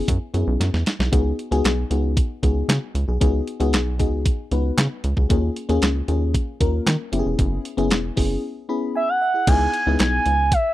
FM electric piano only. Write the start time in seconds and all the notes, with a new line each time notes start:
0.34 B3 C#4 E4 G#4
0.99 E4 G#4
1.12 B3 D#4 F#4 G#4
1.51 B3 D#4 F#4 G#4
1.90 B3 D#4 F#4 G#4
2.43 B3 D#4 F#4 G#4
3.08 F#4 G#4
3.21 B3 D#4 F#4 G#4
3.60 B3 D#4 F#4 G#4
3.99 B3 D#4 F#4 G#4
4.51 B3 D#4 F#4 B4
5.17 F#4 G#4
5.29 A#3 C#4 F4 G#4
5.69 A#3 C#4 F4 G#4
6.08 A#3 C#4 F4 G#4
6.60 A#3 C#4 F4 A#4
7.12 B3 C#4 E4 G4
7.19 G#4
7.77 B3 C#4 E4 G#4
8.16 B3 C#4 E4 G#4
8.69 B3 C#4 E4 G#4 B5
8.95 G#5
9.22 E5
9.34 E4 G#4
9.47 B3 D#4 E4 G#4
9.87 B3 D#4 E4 G#4